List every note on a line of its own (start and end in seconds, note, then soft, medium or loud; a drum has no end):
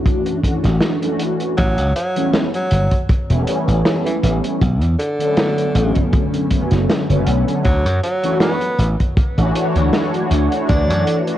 0.00 0.39 E3 medium
0.00 0.39 A3 medium
0.00 0.40 C#4 medium
0.00 0.40 D4 medium
0.00 0.40 F#4 medium
0.06 kick loud
0.06 closed hi-hat medium
0.26 closed hi-hat medium
0.43 0.97 E3 medium
0.43 0.97 A3 medium
0.43 0.98 C#4 medium
0.43 0.98 D4 medium
0.43 0.98 F#4 medium
0.43 kick medium
0.43 closed hi-hat medium
0.64 0.78 A1 medium
0.64 snare soft
0.64 closed hi-hat medium
0.81 snare loud
0.81 closed hi-hat medium
1.02 1.55 E3 medium
1.02 1.56 A3 medium
1.02 1.56 C#4 medium
1.02 1.56 D4 medium
1.02 1.56 F#4 loud
1.02 closed hi-hat medium
1.20 closed hi-hat loud
1.40 closed hi-hat medium
1.57 1.78 A1 loud
1.57 1.92 F#3 loud
1.57 kick loud
1.57 closed hi-hat medium
1.78 1.91 C#2 medium
1.78 closed hi-hat medium
1.96 2.30 F#3 medium
1.96 closed hi-hat medium
2.16 2.47 E3 medium
2.16 2.47 G3 medium
2.16 2.47 A3 medium
2.16 2.47 B3 medium
2.16 2.48 C#4 loud
2.16 closed hi-hat medium
2.33 snare loud
2.33 closed hi-hat medium
2.54 2.99 F#3 medium
2.54 closed hi-hat medium
2.71 2.87 G1 medium
2.71 closed hi-hat loud
2.91 kick medium
2.91 closed hi-hat medium
3.09 muted slap bass stroke soft
3.09 kick loud
3.09 closed hi-hat medium
3.30 3.43 E1 medium
3.30 3.45 E3 medium
3.30 3.45 G3 medium
3.30 3.45 A3 medium
3.30 3.45 B3 medium
3.30 3.45 C#4 loud
3.30 closed hi-hat medium
3.46 4.58 E3 medium
3.46 4.59 G3 medium
3.46 4.59 A3 medium
3.46 4.60 B3 medium
3.46 4.60 C#4 loud
3.46 closed hi-hat loud
3.68 3.81 A1 medium
3.68 closed hi-hat medium
3.85 snare loud
3.85 closed hi-hat medium
4.05 4.17 E3 medium
4.05 closed hi-hat medium
4.23 4.39 A1 medium
4.23 4.36 E3 medium
4.23 closed hi-hat medium
4.44 closed hi-hat medium
4.61 4.81 B1 loud
4.61 kick loud
4.61 closed hi-hat medium
4.81 4.95 E2 medium
4.81 closed hi-hat medium
4.99 6.06 D3 loud
4.99 closed hi-hat medium
5.18 6.46 D3 medium
5.18 6.47 F#3 medium
5.18 6.47 A3 medium
5.18 6.47 B3 medium
5.18 6.48 C#4 medium
5.18 closed hi-hat medium
5.37 snare loud
5.37 closed hi-hat medium
5.58 closed hi-hat soft
5.75 5.91 A1 loud
5.75 closed hi-hat loud
5.95 kick medium
5.95 closed hi-hat medium
6.13 kick loud
6.13 closed hi-hat medium
6.34 closed hi-hat soft
6.50 7.04 D3 medium
6.50 7.05 F#3 medium
6.50 7.05 A3 medium
6.50 7.05 B3 medium
6.50 7.05 C#4 medium
6.50 kick medium
6.50 closed hi-hat medium
6.71 6.85 F#1 medium
6.71 snare soft
6.71 closed hi-hat medium
6.89 snare loud
6.89 closed hi-hat medium
7.09 7.23 F#1 medium
7.09 7.63 D3 medium
7.09 7.63 F#3 medium
7.09 7.63 A3 medium
7.09 7.63 B3 medium
7.09 7.63 C#4 loud
7.09 closed hi-hat medium
7.27 7.43 B1 medium
7.27 closed hi-hat loud
7.48 closed hi-hat medium
7.65 7.86 D2 loud
7.65 8.00 F#3 medium
7.65 kick loud
7.65 closed hi-hat medium
7.86 7.99 F#2 medium
7.86 closed hi-hat medium
8.03 8.38 F#3 medium
8.03 closed hi-hat medium
8.23 8.54 E3 medium
8.23 8.55 A3 medium
8.23 8.55 C#4 medium
8.23 8.55 D4 medium
8.23 8.55 F#4 loud
8.23 closed hi-hat medium
8.40 8.87 B3 medium
8.40 snare loud
8.40 closed hi-hat medium
8.61 closed hi-hat medium
8.79 8.95 A1 medium
8.79 closed hi-hat medium
9.00 kick medium
9.00 closed hi-hat medium
9.17 muted slap bass stroke soft
9.17 kick loud
9.17 closed hi-hat medium
9.37 9.51 A1 medium
9.37 9.52 E3 medium
9.37 9.52 A3 medium
9.37 9.53 C#4 medium
9.37 9.53 D4 medium
9.37 9.53 F#4 loud
9.37 closed hi-hat medium
9.54 11.22 E3 medium
9.54 11.22 A3 medium
9.54 11.23 D4 medium
9.54 11.24 F#4 loud
9.54 11.23 C#5 medium
9.54 closed hi-hat loud
9.76 9.89 D2 medium
9.76 closed hi-hat medium
9.93 snare loud
9.93 closed hi-hat medium
10.14 closed hi-hat medium
10.31 10.47 D2 medium
10.31 closed hi-hat loud
10.52 closed hi-hat medium
10.68 10.90 D2 loud
10.68 11.27 D4 medium
10.68 kick loud
10.68 closed hi-hat medium
10.90 11.03 F#2 medium
10.90 closed hi-hat medium
11.07 closed hi-hat medium
11.26 11.38 E3 medium
11.26 11.38 A3 medium
11.26 11.38 C#4 medium
11.26 11.38 D4 medium
11.26 11.38 F#4 medium
11.26 closed hi-hat medium